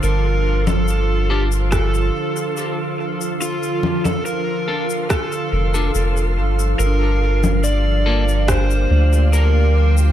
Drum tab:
SH |x--xx--xxx-xx--x|xx-xx--xxx-xxx-x|x--xx--xxx-xx--x|
SD |--------r-------|--------r-------|--------r-------|
CG |---O------------|--OO------------|---O------------|
BD |--------o-------|--------o-------|--------o-------|